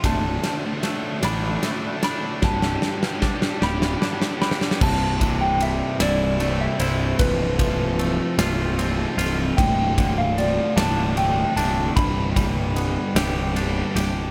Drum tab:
CC |------------------------|------------------------|x-----------------------|------------------------|
RD |x---x---x---x---x---x---|------------------------|----x---x---x---x---x---|x---x---x---x---x---x---|
SD |o---o---o---o---o---o---|o-o-o-o-o-o-o-o-o-o-oooo|------------o-----------|------------o-----------|
BD |o-----------------------|o-------o---------------|o---o-------------------|o---o-------------------|

CC |------------------------|------------------------|
RD |x---x---x---x---x---x---|x---x---x---x---x---x---|
SD |------------o-----------|------------o-----------|
BD |o---o-------------------|o---o-------------------|